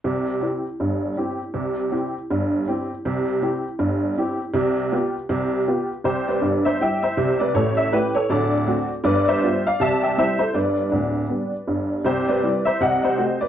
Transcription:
X:1
M:4/4
L:1/8
Q:"Swing" 1/4=160
K:C
V:1 name="Honky-tonk piano"
z8 | z8 | z8 | z8 |
[Gc] [Bd]2 [ce] [eg] [ce]2 [Bd] | [A^c] [ce] [GB] [Ac] [Ad]3 z | [Bd] [ce]2 [df] [ea] [eg] [ce] [Ac] | [Bd]6- [Bd] z |
[Gc] [Bd]2 [ce] [_e_g] [ce]2 [Bd] |]
V:2 name="Honky-tonk piano" clef=bass
[C,,C,]2 [CEG]2 [G,,,G,,]2 [CEG]2 | [C,,C,]2 [CEG]2 [G,,,G,,]2 [CEG]2 | [C,,C,]2 [CEG]2 [G,,,G,,]2 [CEG]2 | [C,,C,]2 [B,FG]2 [C,,C,]2 [B,FG]2 |
[C,,C,]2 [G,,,G,,]2 [G,EG]2 [C,,C,]2 | [A,,,A,,]2 [A,E]2 [D,,,D,,]2 [A,C^F]2 | [G,,,G,,]2 [G,B,F]2 [C,,C,]2 [G,CE]2 | [G,,,G,,]2 [D,,,D,,]2 [G,B,D]2 [G,,,G,,]2 |
[C,,C,]2 [G,CE]2 [C,,C,]2 [A,C_G]2 |]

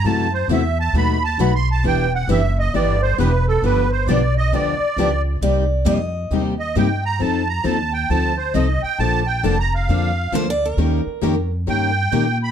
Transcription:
X:1
M:4/4
L:1/16
Q:"Swing" 1/4=134
K:G
V:1 name="Accordion"
a2 c2 e2 a2 b2 a2 (3b2 c'2 a2 | g2 f2 e2 ^d2 =d2 c2 B2 A2 | B2 c2 d2 ^d2 =d6 z2 | [K:Cm] z8 z2 e2 g2 b2 |
=a2 b2 a2 g2 a2 c2 e2 g2 | =a2 g2 (3a2 b2 f2- f4 z4 | z8 g6 =b2 |]
V:2 name="Steel-string acoustic guitar"
z16 | z16 | z16 | [K:Cm] d4 e4- e z6 z |
z16 | z12 (3c2 d2 B2- | B6 z8 z2 |]
V:3 name="Steel-string acoustic guitar"
[F,CEA]2 z2 [F,CEA]2 z2 [B,,F,A,^DFB]2 z2 [B,,F,A,DFB]2 z2 | [E,G,DEB]2 z2 [E,G,DEB]2 z2 [E,G,DEB]2 z2 [E,G,DEB]2 z2 | [D,=F,B,DG]2 z2 [D,F,B,DG]2 z2 [D,F,B,DG]2 z2 [D,F,B,DG]2 z2 | [K:Cm] [C,G,B,EG]2 z2 [C,G,B,EG]2 z2 [C,G,B,EG]2 z2 [C,G,B,EG]2 z2 |
[F,CE=A]2 z2 [F,CEA]2 z2 [F,CEA]2 z2 [F,CEA]2 z2 | [D,F,B,D=A]2 z2 [D,F,B,DA]2 z2 [D,F,B,DA]2 z2 [D,F,B,DA]2 z2 | [E,B,_DGB]2 z2 [E,B,DGB]2 z2 [E,B,DGB]2 z2 [E,B,DGB]2 z2 |]
V:4 name="Steel-string acoustic guitar"
[C,E,A,EF]2 z2 [C,E,A,EF]2 z2 [B,,F,A,^DF]2 z2 [B,,F,A,DF]2 z2 | [E,B,DG]2 z2 [E,B,DG]2 z2 [E,B,DG]2 z2 [E,B,DG]2 z2 | [D,=F,B,DG]2 z2 [D,F,B,DG]2 z2 [D,F,B,DG]2 z2 [D,F,B,DG]2 z2 | [K:Cm] [C,G,B,EG]2 z2 [C,G,B,EG]2 z2 [C,G,B,EG]2 z2 [C,G,B,EG]2 z2 |
[F,CE=A]2 z2 [F,CEA]2 z2 [F,CEA]2 z2 [F,CEA]2 z2 | [D,F,B,D=A]2 z2 [D,F,B,DA]2 z2 [D,F,B,DA]2 z2 [D,F,B,DA]2 z2 | [E,B,_DGB]2 z2 [E,B,DGB]2 z2 [E,B,DGB]2 z2 [E,B,DGB]2 z2 |]
V:5 name="Upright bass" clef=bass
F,,4 E,,4 ^D,,4 B,,,4 | E,,,4 F,,,4 G,,,4 E,,,4 | G,,,4 B,,,4 D,,2 z2 ^C,,4 | [K:Cm] C,,4 F,,4 E,,4 G,,4 |
F,,4 E,,4 D,,4 C,,2 z2 | B,,,4 F,,,4 F,,4 D,,4 | E,,2 z2 F,,4 G,,4 B,,4 |]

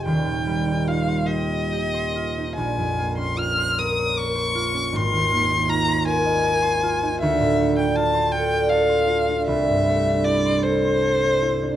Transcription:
X:1
M:6/8
L:1/16
Q:3/8=52
K:Ab
V:1 name="Violin"
g4 f2 e6 | a3 c' f'2 e'2 d'4 | c'4 b2 a6 | [K:C] e3 g a2 g2 f4 |
e4 d2 c6 |]
V:2 name="Harp"
[E,,,E,,CEGce] B,, G, E F c G e G c F E | B,,, F,, B, D F c B d B c F D | A,,, E,, B, E F c B e B c F E | [K:C] D,, A,, A, D F c A d A c F D |
C,, G,, A, D E c A c A c E D |]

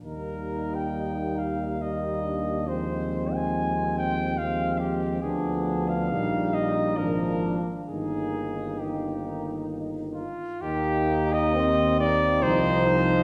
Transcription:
X:1
M:3/4
L:1/16
Q:1/4=68
K:Eb
V:1 name="Flugelhorn"
B3 g3 f2 e4 | c3 a3 g2 f2 G2 | A3 f3 e2 B3 z | A4 G4 z2 F2 |
G3 e3 d2 c4 |]
V:2 name="French horn section"
E8 E2 D2 | C8 C4 | D4 E4 D4 | E4 E6 z2 |
E4 C2 B,2 E2 E2 |]
V:3 name="Euphonium"
B,8 B,4 | A,8 A,4 | =B,4 _B,4 B,4 | B,4 B,6 z2 |
B,4 C8 |]
V:4 name="Trombone" clef=bass
G,8 G,4 | F,8 F,4 | F,4 G,4 F,4 | E,4 E,6 z2 |
E,8 F,4 |]
V:5 name="Tuba" clef=bass
E,,12- | E,,12 | D,,4 B,,,4 A,,,4 | G,,,8- G,,,2 z2 |
E,,8 C,,4 |]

